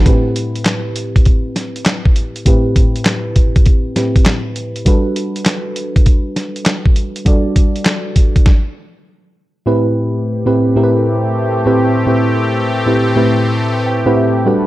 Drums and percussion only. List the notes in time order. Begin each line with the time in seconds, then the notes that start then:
0.06 kick, closed hi-hat
0.36 closed hi-hat
0.56 closed hi-hat
0.66 snare, clap, closed hi-hat
0.96 closed hi-hat
1.16 kick, closed hi-hat
1.25 kick, closed hi-hat
1.56 snare, closed hi-hat
1.76 closed hi-hat
1.86 snare, clap, closed hi-hat
2.05 kick
2.16 closed hi-hat
2.36 closed hi-hat
2.46 kick, closed hi-hat
2.76 kick, closed hi-hat
2.96 closed hi-hat
3.05 snare, clap, closed hi-hat
3.36 kick, closed hi-hat
3.56 kick, closed hi-hat
3.66 kick, closed hi-hat
3.96 snare, closed hi-hat
4.16 kick, closed hi-hat
4.26 snare, clap, closed hi-hat
4.56 closed hi-hat
4.76 closed hi-hat
4.86 kick, closed hi-hat
5.16 closed hi-hat
5.36 closed hi-hat
5.46 snare, clap, closed hi-hat
5.76 closed hi-hat
5.96 kick, closed hi-hat
6.06 kick, closed hi-hat
6.36 snare, closed hi-hat
6.56 closed hi-hat
6.66 snare, clap, closed hi-hat
6.86 kick
6.96 closed hi-hat
7.16 closed hi-hat
7.26 kick, closed hi-hat
7.56 kick, closed hi-hat
7.76 closed hi-hat
7.86 snare, clap, closed hi-hat
8.16 kick, closed hi-hat
8.36 kick, closed hi-hat
8.46 kick, snare